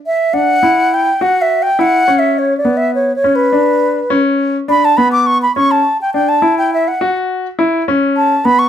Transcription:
<<
  \new Staff \with { instrumentName = "Flute" } { \time 5/4 \key e \dorian \tempo 4 = 103 e''8 fis''4 g''8 \tuplet 3/2 { fis''8 e''8 g''8 fis''4 e''8 cis''8 d''8 e''8 } | \tuplet 3/2 { cis''8 cis''8 b'8~ } b'4~ b'16 r8. b''16 a''16 b''16 d'''16 cis'''16 b''16 cis'''16 a''16~ | a''16 g''16 g''16 a''8 g''16 e''16 fis''8 r4. r16 a''8 b''16 cis'''16 | }
  \new Staff \with { instrumentName = "Grand piano" } { \time 5/4 \key e \dorian r8 d'8 e'4 fis'4 e'8 cis'4 b8~ | b8 cis'8 d'4 cis'4 d'8 b4 cis'8 | r8 d'8 e'4 fis'4 e'8 cis'4 b8 | }
>>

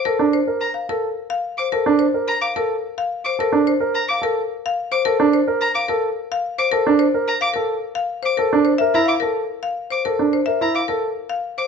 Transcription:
<<
  \new Staff \with { instrumentName = "Violin" } { \time 3/4 \key bes \lydian \tempo 4 = 108 r4 bes''16 r4. d'''16 | r4 bes''16 d'''16 r4 r16 d'''16 | r4 bes''16 d'''16 r4 r16 d'''16 | r4 bes''16 d'''16 r4 r16 d'''16 |
r4 bes''16 d'''16 r4 r16 d'''16 | r4 bes''16 d'''16 r4 r16 d'''16 | r4 bes''16 d'''16 r4 r16 d'''16 | }
  \new Staff \with { instrumentName = "Marimba" } { \time 3/4 \key bes \lydian bes'16 r16 c''16 r8 f''16 bes'16 r8 f''16 r16 c''16 | bes'16 r16 c''16 r8 f''16 bes'16 r8 f''16 r16 c''16 | bes'16 r16 c''16 r8 f''16 bes'16 r8 f''16 r16 c''16 | bes'16 r16 c''16 r8 f''16 bes'16 r8 f''16 r16 c''16 |
bes'16 r16 c''16 r8 f''16 bes'16 r8 f''16 r16 c''16 | bes'16 r16 c''16 e''16 r16 f''16 bes'16 r8 f''16 r16 c''16 | bes'16 r16 c''16 e''16 r16 f''16 bes'16 r8 f''16 r16 c''16 | }
  \new Staff \with { instrumentName = "Grand piano" } { \time 3/4 \key bes \lydian a'16 d'16 r16 bes'16 r8 a'16 r4 r16 | a'16 d'16 r16 bes'16 r8 a'16 r4 r16 | a'16 d'16 r16 bes'16 r8 a'16 r4 r16 | a'16 d'16 r16 bes'16 r8 a'16 r4 r16 |
a'16 d'16 r16 bes'16 r8 a'16 r4 r16 | a'16 d'16 r16 bes'16 e'16 r16 a'16 r4 r16 | a'16 d'16 r16 bes'16 e'16 r16 a'16 r4 r16 | }
>>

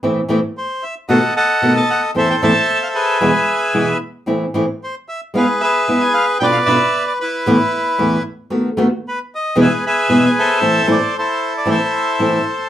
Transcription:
<<
  \new Staff \with { instrumentName = "Bandoneon" } { \time 4/4 \key a \minor \tempo 4 = 114 << { r4 c''8 e''8 fis''8 fis''8. a''16 fis''8 | e''16 g''16 a''8. f''16 e''2 r8 | r4 c''8 e''8 f''8 e''8. gis''16 f''8 | g''16 f''16 e''8. d''16 b'2 r8 |
r4 b'8 dis''8 e''8 e''8. gis''16 e''8~ | e''8 d''8 c''8. d''16 e''4. r8 | } \\ { r2 <a' dis''>8 <a' dis''>4. | <a' c''>8 <c'' e''>4 <gis' b'>2 r8 | r2 <gis' b'>8 <gis' b'>4. | <b' d''>8 b'4 e'2 r8 |
r2 <gis' b'>8 <gis' b'>4 <a' c''>8~ | <a' c''>4 <e' a'>4 <a' c''>2 | } >> }
  \new Staff \with { instrumentName = "Nylon-string guitar" } { \time 4/4 \key a \minor <a, e a c' e'>8 <a, e a c' e'>8 r4 <b, dis a b fis'>8 r8 <b, dis a b fis'>8 r8 | <e, a, e a c' e'>8 <e, a, e a c' e'>8 r4 <e, b, e gis b e'>8 r8 <e, b, e gis b e'>8 r8 | <a, e a c' e'>8 <a, e a c' e'>8 r4 <gis b e'>8 r8 <gis b e'>8 r8 | <b, d b d' f'>8 <b, d b d' f'>8 r4 <e, a, e a b e'>8 r8 <e, a, e a b e'>8 r8 |
<dis a b fis'>8 <dis a b fis'>8 r4 <e, b, e gis b e'>8 r8 <e, b, e gis b e'>8 r8 | <a, e a c' e'>8 <a, e a c' e'>8 r4 <a, e a c' e'>8 r8 <a, e a c' e'>8 r8 | }
>>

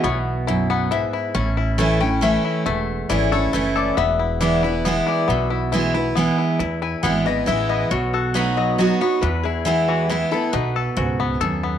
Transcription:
<<
  \new Staff \with { instrumentName = "Resonator guitar played with a steel bar" } { \time 3/4 \key e \major \tempo 4 = 137 cis''8 r4 fis''8 e''4 | r4. g''8 e''4 | r4 d''8 cis''4 d''8 | e''4 d''8 b'4 d''8 |
e''4 r2 | r8 gis''8 fis''8 dis''8 e''8 dis''8 | cis''8 fis'8 b'8 dis''8 dis''8 cis''8 | b'8 gis'8 e'8 fis'8 gis'8 a'8 |
b'2. | }
  \new Staff \with { instrumentName = "Five-string banjo" } { \time 3/4 \key e \major <b e'>4 e'8 b8 e'8 e'8 | cis'8 e'8 a8 cis'8 a8 e'8 | a4 e'8 a'8 a8 a'8 | b8 e'8 e'8 e'8 b8 e'8 |
b8 e'8 e'8 e'8 b8 e'8 | e'8 e'8 b8 e8 e'8 b8 | fis'8 a'8 b8 fis8 fis'8 b8 | e8 e'8 e'8 e8 e'8 e'8 |
dis'8 a'8 fis'8 b8 a'8 b8 | }
  \new Staff \with { instrumentName = "Steel-string acoustic guitar" } { \time 3/4 \key e \major << { r2. | r4 <e a cis' e'>8 <cis' e'>8 <e a cis' e'>4 | r4 <e a cis' e'>8 <cis' e'>8 <e a cis' e'>4 | r4 <e gis b e'>8 <b e'>8 <e gis b e'>4 |
r4 <e gis b e'>8 <b e'>8 <e gis b e'>4 | r4 <e gis b e'>8 <b e'>8 <e gis b e'>4 | r4 <fis b dis' fis'>4 <fis b dis' fis'>8 <dis' fis'>8 | r4 <e gis b e'>4 <e gis b e'>8 <b e'>8 |
r2. | } \\ { b,4 fis,4 gis,4 | a,2 r4 | e,2 r4 | e,2 r4 |
b,2 r4 | e,2 r4 | b,2 r4 | e,2 r4 |
b,4 gis,4 fis,4 | } >> }
  \new Staff \with { instrumentName = "Upright bass" } { \clef bass \time 3/4 \key e \major b,,2. | a,,2. | e,,4 gis,,4 fis,,4 | e,,2. |
b,,2. | e,4 gis,,4 a,,4 | b,,2. | e,2. |
b,,4 cis,4 dis,4 | }
>>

